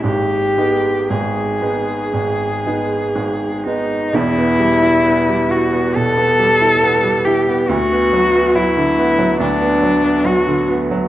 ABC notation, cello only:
X:1
M:4/4
L:1/8
Q:1/4=68
K:G#m
V:1 name="Cello"
=G2 ^G4- G D | [K:Em] E3 F A3 G | F2 E2 D2 F z |]